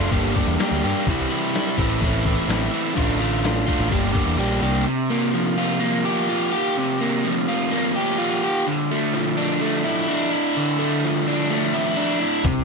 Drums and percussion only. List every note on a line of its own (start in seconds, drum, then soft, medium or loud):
0.12 kick medium
0.12 closed hi-hat medium
0.36 kick medium
0.36 closed hi-hat medium
0.60 snare loud
0.60 closed hi-hat medium
0.84 closed hi-hat medium
1.07 kick medium
1.07 closed hi-hat medium
1.31 closed hi-hat medium
1.55 snare medium
1.55 closed hi-hat medium
1.78 kick medium
1.78 closed hi-hat medium
2.02 kick medium
2.02 closed hi-hat medium
2.26 kick medium
2.26 closed hi-hat medium
2.50 snare loud
2.50 closed hi-hat medium
2.74 closed hi-hat medium
2.97 kick medium
2.97 closed hi-hat medium
3.21 closed hi-hat medium
3.45 snare loud
3.45 closed hi-hat medium
3.68 kick medium
3.68 closed hi-hat medium
3.92 kick medium
3.92 closed hi-hat medium
4.15 kick medium
4.15 closed hi-hat medium
4.39 closed hi-hat medium
4.63 closed hi-hat medium
12.45 kick loud
12.45 open hi-hat medium